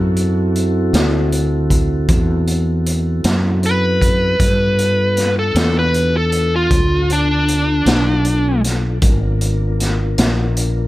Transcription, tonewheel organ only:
0, 0, Header, 1, 2, 480
1, 0, Start_track
1, 0, Tempo, 770218
1, 2744, Time_signature, 12, 3, 24, 8
1, 6779, End_track
2, 0, Start_track
2, 0, Title_t, "Tonewheel organ"
2, 0, Program_c, 0, 16
2, 0, Note_on_c, 0, 60, 57
2, 0, Note_on_c, 0, 64, 54
2, 0, Note_on_c, 0, 66, 60
2, 0, Note_on_c, 0, 69, 53
2, 2719, Note_off_c, 0, 69, 0
2, 2720, Note_off_c, 0, 64, 0
2, 2721, Note_off_c, 0, 60, 0
2, 2721, Note_off_c, 0, 66, 0
2, 2741, Note_on_c, 0, 62, 59
2, 2746, Note_on_c, 0, 69, 60
2, 2749, Note_on_c, 0, 65, 58
2, 2750, Note_on_c, 0, 59, 59
2, 5598, Note_off_c, 0, 62, 0
2, 5600, Note_off_c, 0, 69, 0
2, 5602, Note_off_c, 0, 65, 0
2, 5603, Note_off_c, 0, 59, 0
2, 5634, Note_on_c, 0, 62, 63
2, 5634, Note_on_c, 0, 65, 60
2, 5634, Note_on_c, 0, 70, 63
2, 5637, Note_on_c, 0, 59, 61
2, 6779, Note_off_c, 0, 59, 0
2, 6779, Note_off_c, 0, 62, 0
2, 6779, Note_off_c, 0, 65, 0
2, 6779, Note_off_c, 0, 70, 0
2, 6779, End_track
0, 0, End_of_file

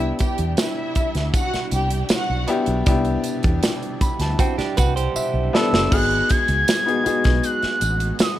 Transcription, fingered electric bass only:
0, 0, Header, 1, 3, 480
1, 0, Start_track
1, 0, Tempo, 761421
1, 1811, Time_signature, 4, 2, 24, 8
1, 5290, End_track
2, 0, Start_track
2, 0, Title_t, "Fingered electric bass"
2, 0, Program_c, 0, 33
2, 0, Note_on_c, 0, 36, 88
2, 69, Note_off_c, 0, 36, 0
2, 245, Note_on_c, 0, 40, 81
2, 338, Note_off_c, 0, 40, 0
2, 726, Note_on_c, 0, 38, 84
2, 819, Note_off_c, 0, 38, 0
2, 1085, Note_on_c, 0, 36, 110
2, 1270, Note_off_c, 0, 36, 0
2, 1448, Note_on_c, 0, 35, 91
2, 1540, Note_off_c, 0, 35, 0
2, 1686, Note_on_c, 0, 35, 101
2, 1779, Note_off_c, 0, 35, 0
2, 1808, Note_on_c, 0, 36, 99
2, 1991, Note_off_c, 0, 36, 0
2, 2170, Note_on_c, 0, 40, 87
2, 2261, Note_off_c, 0, 40, 0
2, 2645, Note_on_c, 0, 38, 86
2, 2738, Note_off_c, 0, 38, 0
2, 3016, Note_on_c, 0, 36, 96
2, 3196, Note_off_c, 0, 36, 0
2, 3365, Note_on_c, 0, 35, 92
2, 3458, Note_off_c, 0, 35, 0
2, 3610, Note_on_c, 0, 30, 85
2, 3701, Note_off_c, 0, 30, 0
2, 3731, Note_on_c, 0, 32, 91
2, 3913, Note_off_c, 0, 32, 0
2, 4089, Note_on_c, 0, 37, 87
2, 4180, Note_off_c, 0, 37, 0
2, 4571, Note_on_c, 0, 35, 96
2, 4661, Note_off_c, 0, 35, 0
2, 4929, Note_on_c, 0, 33, 108
2, 5111, Note_off_c, 0, 33, 0
2, 5290, End_track
3, 0, Start_track
3, 0, Title_t, "Muted fingered electric bass strokes"
3, 605, Note_on_c, 9, 29, 39
3, 668, Note_off_c, 9, 29, 0
3, 972, Note_on_c, 9, 29, 50
3, 1035, Note_off_c, 9, 29, 0
3, 1326, Note_on_c, 9, 29, 46
3, 1389, Note_off_c, 9, 29, 0
3, 2528, Note_on_c, 9, 29, 45
3, 2591, Note_off_c, 9, 29, 0
3, 2890, Note_on_c, 9, 29, 50
3, 2953, Note_off_c, 9, 29, 0
3, 3251, Note_on_c, 9, 29, 40
3, 3314, Note_off_c, 9, 29, 0
3, 4451, Note_on_c, 9, 29, 42
3, 4514, Note_off_c, 9, 29, 0
3, 4811, Note_on_c, 9, 29, 48
3, 4874, Note_off_c, 9, 29, 0
3, 5167, Note_on_c, 9, 29, 47
3, 5230, Note_off_c, 9, 29, 0
3, 5290, End_track
0, 0, End_of_file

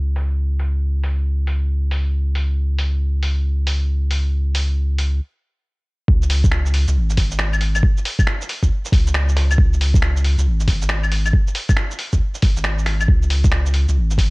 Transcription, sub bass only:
0, 0, Header, 1, 2, 480
1, 0, Start_track
1, 0, Tempo, 437956
1, 901, Time_signature, 4, 2, 24, 8
1, 15674, End_track
2, 0, Start_track
2, 0, Title_t, "Sub bass"
2, 0, Program_c, 0, 38
2, 0, Note_on_c, 0, 37, 82
2, 5701, Note_off_c, 0, 37, 0
2, 6665, Note_on_c, 0, 37, 95
2, 7518, Note_off_c, 0, 37, 0
2, 7538, Note_on_c, 0, 37, 86
2, 7631, Note_on_c, 0, 32, 99
2, 7647, Note_off_c, 0, 37, 0
2, 8575, Note_off_c, 0, 32, 0
2, 9457, Note_on_c, 0, 37, 85
2, 9535, Note_off_c, 0, 37, 0
2, 9784, Note_on_c, 0, 37, 84
2, 10491, Note_off_c, 0, 37, 0
2, 10505, Note_on_c, 0, 37, 96
2, 11358, Note_off_c, 0, 37, 0
2, 11375, Note_on_c, 0, 37, 86
2, 11469, Note_on_c, 0, 32, 98
2, 11485, Note_off_c, 0, 37, 0
2, 12414, Note_off_c, 0, 32, 0
2, 13294, Note_on_c, 0, 37, 86
2, 13374, Note_off_c, 0, 37, 0
2, 13772, Note_on_c, 0, 32, 80
2, 14329, Note_off_c, 0, 32, 0
2, 14341, Note_on_c, 0, 37, 94
2, 15196, Note_off_c, 0, 37, 0
2, 15218, Note_on_c, 0, 37, 86
2, 15308, Note_on_c, 0, 32, 102
2, 15324, Note_off_c, 0, 37, 0
2, 15674, Note_off_c, 0, 32, 0
2, 15674, End_track
0, 0, End_of_file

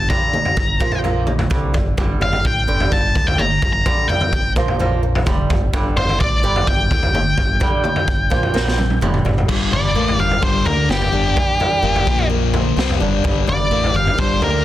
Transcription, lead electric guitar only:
0, 0, Header, 1, 2, 480
1, 0, Start_track
1, 0, Key_signature, -2, "minor"
1, 0, Tempo, 469484
1, 102, Time_signature, 4, 2, 24, 8
1, 14975, End_track
2, 0, Start_track
2, 0, Title_t, "Lead electric guitar"
2, 0, Program_c, 0, 29
2, 101, Note_on_c, 0, 82, 88
2, 1019, Note_off_c, 0, 82, 0
2, 2273, Note_on_c, 0, 77, 69
2, 2513, Note_off_c, 0, 77, 0
2, 2522, Note_on_c, 0, 79, 81
2, 2991, Note_on_c, 0, 81, 89
2, 3005, Note_off_c, 0, 79, 0
2, 3341, Note_on_c, 0, 79, 80
2, 3355, Note_off_c, 0, 81, 0
2, 3458, Note_on_c, 0, 82, 90
2, 3463, Note_off_c, 0, 79, 0
2, 3799, Note_off_c, 0, 82, 0
2, 3812, Note_on_c, 0, 82, 92
2, 4169, Note_on_c, 0, 79, 73
2, 4186, Note_off_c, 0, 82, 0
2, 4620, Note_off_c, 0, 79, 0
2, 6105, Note_on_c, 0, 72, 83
2, 6337, Note_off_c, 0, 72, 0
2, 6341, Note_on_c, 0, 74, 85
2, 6826, Note_on_c, 0, 79, 93
2, 6835, Note_off_c, 0, 74, 0
2, 9182, Note_off_c, 0, 79, 0
2, 9951, Note_on_c, 0, 74, 98
2, 10412, Note_off_c, 0, 74, 0
2, 10428, Note_on_c, 0, 77, 80
2, 10657, Note_off_c, 0, 77, 0
2, 10659, Note_on_c, 0, 72, 86
2, 10893, Note_off_c, 0, 72, 0
2, 10893, Note_on_c, 0, 70, 80
2, 11130, Note_off_c, 0, 70, 0
2, 11148, Note_on_c, 0, 67, 85
2, 12543, Note_off_c, 0, 67, 0
2, 13795, Note_on_c, 0, 74, 96
2, 14253, Note_off_c, 0, 74, 0
2, 14273, Note_on_c, 0, 77, 88
2, 14499, Note_off_c, 0, 77, 0
2, 14512, Note_on_c, 0, 72, 91
2, 14738, Note_off_c, 0, 72, 0
2, 14759, Note_on_c, 0, 70, 84
2, 14975, Note_off_c, 0, 70, 0
2, 14975, End_track
0, 0, End_of_file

